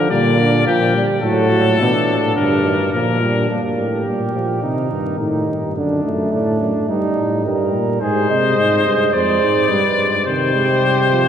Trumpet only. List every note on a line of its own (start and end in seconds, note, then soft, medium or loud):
0.11 0.66 D5 medium
0.67 1.03 G4 medium
1.23 2.32 A4 medium
2.36 2.92 A#4 medium
2.93 3.49 A#4 medium
8.01 9.10 C5 medium
9.14 10.25 D5 medium
10.27 11.28 C5 medium